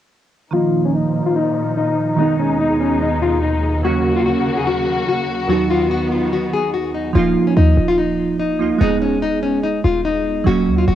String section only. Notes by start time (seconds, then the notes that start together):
0.53 A#2 F3 D#4
2.19 D#2 B2 G#3
3.84 C#3 A#3 F#4
5.50 D#3 B3